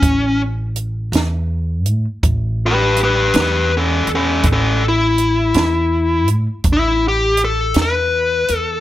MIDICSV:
0, 0, Header, 1, 4, 480
1, 0, Start_track
1, 0, Tempo, 735294
1, 23, Time_signature, 12, 3, 24, 8
1, 5745, End_track
2, 0, Start_track
2, 0, Title_t, "Lead electric guitar"
2, 0, Program_c, 0, 29
2, 0, Note_on_c, 0, 61, 84
2, 266, Note_off_c, 0, 61, 0
2, 1737, Note_on_c, 0, 67, 77
2, 1743, Note_on_c, 0, 71, 77
2, 1955, Note_off_c, 0, 71, 0
2, 1960, Note_off_c, 0, 67, 0
2, 1981, Note_on_c, 0, 67, 80
2, 1988, Note_on_c, 0, 71, 80
2, 2186, Note_off_c, 0, 67, 0
2, 2199, Note_off_c, 0, 71, 0
2, 2220, Note_on_c, 0, 67, 70
2, 2228, Note_on_c, 0, 71, 78
2, 2425, Note_off_c, 0, 67, 0
2, 2439, Note_off_c, 0, 71, 0
2, 2461, Note_on_c, 0, 61, 64
2, 2466, Note_on_c, 0, 69, 73
2, 2666, Note_off_c, 0, 61, 0
2, 2677, Note_off_c, 0, 69, 0
2, 2709, Note_on_c, 0, 61, 73
2, 2713, Note_on_c, 0, 69, 68
2, 2911, Note_off_c, 0, 61, 0
2, 2920, Note_off_c, 0, 69, 0
2, 2953, Note_on_c, 0, 61, 66
2, 2956, Note_on_c, 0, 69, 78
2, 3152, Note_off_c, 0, 61, 0
2, 3162, Note_off_c, 0, 69, 0
2, 3187, Note_on_c, 0, 64, 68
2, 4098, Note_off_c, 0, 64, 0
2, 4391, Note_on_c, 0, 64, 88
2, 4600, Note_off_c, 0, 64, 0
2, 4624, Note_on_c, 0, 67, 83
2, 4836, Note_off_c, 0, 67, 0
2, 4861, Note_on_c, 0, 69, 88
2, 5075, Note_off_c, 0, 69, 0
2, 5103, Note_on_c, 0, 71, 88
2, 5592, Note_off_c, 0, 71, 0
2, 5592, Note_on_c, 0, 69, 88
2, 5745, Note_off_c, 0, 69, 0
2, 5745, End_track
3, 0, Start_track
3, 0, Title_t, "Upright bass"
3, 0, Program_c, 1, 32
3, 16, Note_on_c, 1, 33, 80
3, 713, Note_off_c, 1, 33, 0
3, 732, Note_on_c, 1, 40, 84
3, 1221, Note_off_c, 1, 40, 0
3, 1221, Note_on_c, 1, 45, 79
3, 1332, Note_off_c, 1, 45, 0
3, 1456, Note_on_c, 1, 33, 82
3, 2152, Note_off_c, 1, 33, 0
3, 2182, Note_on_c, 1, 40, 88
3, 2636, Note_off_c, 1, 40, 0
3, 2658, Note_on_c, 1, 40, 78
3, 2880, Note_off_c, 1, 40, 0
3, 2902, Note_on_c, 1, 33, 85
3, 3595, Note_off_c, 1, 33, 0
3, 3622, Note_on_c, 1, 40, 91
3, 4104, Note_off_c, 1, 40, 0
3, 4104, Note_on_c, 1, 45, 80
3, 4213, Note_off_c, 1, 45, 0
3, 4340, Note_on_c, 1, 33, 85
3, 5035, Note_off_c, 1, 33, 0
3, 5063, Note_on_c, 1, 40, 86
3, 5516, Note_off_c, 1, 40, 0
3, 5545, Note_on_c, 1, 40, 75
3, 5745, Note_off_c, 1, 40, 0
3, 5745, End_track
4, 0, Start_track
4, 0, Title_t, "Drums"
4, 17, Note_on_c, 9, 36, 103
4, 17, Note_on_c, 9, 42, 80
4, 82, Note_off_c, 9, 36, 0
4, 82, Note_off_c, 9, 42, 0
4, 494, Note_on_c, 9, 42, 54
4, 559, Note_off_c, 9, 42, 0
4, 738, Note_on_c, 9, 42, 78
4, 754, Note_on_c, 9, 38, 86
4, 803, Note_off_c, 9, 42, 0
4, 819, Note_off_c, 9, 38, 0
4, 1212, Note_on_c, 9, 42, 59
4, 1277, Note_off_c, 9, 42, 0
4, 1457, Note_on_c, 9, 36, 106
4, 1457, Note_on_c, 9, 42, 81
4, 1522, Note_off_c, 9, 36, 0
4, 1523, Note_off_c, 9, 42, 0
4, 1936, Note_on_c, 9, 42, 54
4, 2001, Note_off_c, 9, 42, 0
4, 2178, Note_on_c, 9, 42, 74
4, 2194, Note_on_c, 9, 38, 101
4, 2243, Note_off_c, 9, 42, 0
4, 2259, Note_off_c, 9, 38, 0
4, 2657, Note_on_c, 9, 42, 52
4, 2722, Note_off_c, 9, 42, 0
4, 2895, Note_on_c, 9, 42, 76
4, 2899, Note_on_c, 9, 36, 102
4, 2960, Note_off_c, 9, 42, 0
4, 2964, Note_off_c, 9, 36, 0
4, 3381, Note_on_c, 9, 42, 53
4, 3446, Note_off_c, 9, 42, 0
4, 3618, Note_on_c, 9, 42, 74
4, 3634, Note_on_c, 9, 38, 96
4, 3683, Note_off_c, 9, 42, 0
4, 3699, Note_off_c, 9, 38, 0
4, 4097, Note_on_c, 9, 42, 59
4, 4163, Note_off_c, 9, 42, 0
4, 4333, Note_on_c, 9, 42, 83
4, 4337, Note_on_c, 9, 36, 107
4, 4398, Note_off_c, 9, 42, 0
4, 4403, Note_off_c, 9, 36, 0
4, 4812, Note_on_c, 9, 42, 64
4, 4877, Note_off_c, 9, 42, 0
4, 5053, Note_on_c, 9, 42, 72
4, 5069, Note_on_c, 9, 38, 99
4, 5119, Note_off_c, 9, 42, 0
4, 5134, Note_off_c, 9, 38, 0
4, 5538, Note_on_c, 9, 42, 60
4, 5604, Note_off_c, 9, 42, 0
4, 5745, End_track
0, 0, End_of_file